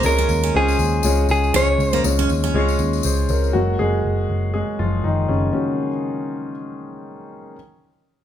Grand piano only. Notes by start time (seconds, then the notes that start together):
Already playing: C#3 G#3 C#4 F4 G#4 F5
0.03 G#3 C#4 F4 G#4 C#5
0.54 G#3 C#4 F4 G#4 C5
1.04 G#3 C#4 F4 G#4 C#5
1.54 C#3 G#3 C#4 F4 G#4 C#5
2.04 G#3 C#4 F4 G#4 C#5
2.54 G#3 C#4 F4 G#4 C#5
3.05 G#4 C5
3.29 A#4 C#5
3.53 F#3 G#3 A#3 F#4
3.79 G#3 G#4
4.54 G#3 G#4
4.79 F3 F4
5.04 D#3 D#4
5.28 C#3 C#4
5.53 C#3 G#3 A#3 C#4 F#4